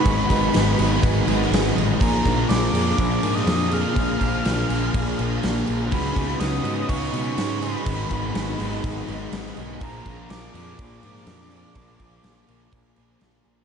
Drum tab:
CC |x-x-x-x-x-x-x-x-|x-x-x-x-x-x-x-x-|x-x-x-x-x-x-x-x-|x-x-x-x-x-x-x-x-|
SD |----o------ooo--|----o------oo---|----o-------oo--|----o-------o---|
BD |o-o-----o-------|o-o-----o-------|o-o-----o-------|o-o-----o-------|

CC |x-x-x-x-x-x-x-x-|x-x-x-x-x-x-x-x-|x-x-x-x-x-x-x-x-|
SD |----o-------oo--|----o------oo---|----o-------oo--|
BD |o-o-----o-------|o-o-----o-------|o-o-----o-------|